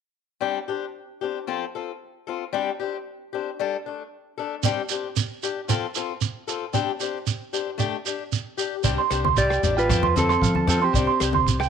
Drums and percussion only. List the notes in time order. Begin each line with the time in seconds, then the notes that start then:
4.63 shekere
4.89 shekere
5.17 shekere
5.43 shekere
5.69 shekere
5.95 shekere
6.21 shekere
6.49 shekere
6.74 shekere
7.00 shekere
7.27 shekere
7.54 shekere
7.79 shekere
8.06 shekere
8.32 shekere
8.58 shekere
8.84 kick, shekere
9.11 cross-stick, closed hi-hat, shekere
9.25 high conga
9.37 kick, shekere
9.50 cross-stick, shekere
9.63 closed hi-hat, low conga, shekere
9.78 shekere
9.89 kick, cross-stick, shekere
10.03 high conga
10.16 closed hi-hat, high conga, shekere
10.29 cross-stick, shekere
10.42 kick, shekere
10.55 high conga
10.67 cross-stick, closed hi-hat, low conga, shekere
10.94 kick, shekere
11.20 cross-stick, closed hi-hat, shekere
11.33 high conga
11.46 kick, shekere
11.60 cross-stick, shekere